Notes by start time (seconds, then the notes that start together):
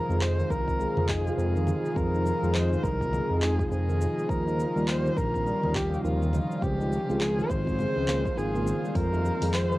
Already playing: C3 D#3 G#3 D#4 F4 A#4
0.08 F2 D#3 G#3 F4, shaker
0.21 F3 C5, clap, shaker
0.39 D#3, shaker
0.50 C2 F3 A#4, kick, shaker
0.68 C4, kick, shaker
0.79 G#3, shaker
0.97 F2 F3, low conga
1.08 D#3 F3 G#3 D#4 G#4, kick, clap, shaker
1.24 C3 D#3 G#3 F4, shaker
1.38 F2 F3 G#4, shaker
1.55 D#3, shaker
1.67 F3, low conga, shaker
1.85 G#3, shaker
1.95 F2 D#3 F3 G#3 F4 A#4, kick, shaker
2.14 D#4, shaker
2.26 F3, shaker
2.41 F2 D#3 G#3 F4, shaker
2.54 F3 C5, clap, shaker
2.72 D#3, shaker
2.83 C2 A#4, kick, shaker
3.01 C4, kick, shaker
3.13 G#3, low conga, shaker
3.30 F2 F3
3.41 D#3 F3 G#3 D#4 G#4, clap, shaker
3.57 C3 D#3 G#3 F4, kick, shaker
3.71 F2 F3 G#4, shaker
3.89 D#3, shaker
4.01 F3, shaker
4.18 G#3, shaker
4.28 D#2 C#3 F3 G3 F4 A#4, kick, shaker
4.47 D#4, shaker
4.59 F3, shaker
4.74 D#2 C#3 G3, shaker
4.78 F4
4.88 F3 C5, clap, shaker
5.06 D#3, shaker
5.17 A#1 F3 A#4, kick, shaker
5.34 C4, kick, shaker
5.46 G3, shaker
5.63 D#2 F3, low conga
5.74 C#3 G3 D#4 G4, kick, clap, shaker
5.92 C3 G3 F4, shaker
6.04 D#2 F3 F4, shaker
6.22 D#3, shaker
6.33 F3, low conga, shaker
6.51 G3, shaker
6.61 C#2 C#3 F3 G#3 C4 F4 G4, kick, shaker
6.80 D#4, shaker
6.92 F3, shaker
7.07 C#2 C#3 G#3 C4 F4, shaker
7.21 F3 G#4, clap, shaker
7.38 D#3, shaker
7.50 G#1 F3 C5, kick, shaker
7.67 C4, kick, shaker
7.79 G#3, low conga, shaker
7.96 C#2 F3
8.08 A#3, clap, shaker
8.25 F3, kick, shaker
8.37 G#1 F4 G#4, shaker
8.53 C#3 A#3 C4 F4, shaker
8.65 C#3 D#3 C4 F4, shaker
8.84 G3, shaker
8.94 F2 D#3 F3 G#3 F4 A#4, kick, open hi-hat, shaker
9.13 D#4, djembe tone, shaker
9.25 F3, shaker
9.40 F2 D#3 G#3, open hi-hat, shaker
9.44 F4
9.54 F3 C5, clap, open hi-hat, shaker
9.71 D#3, shaker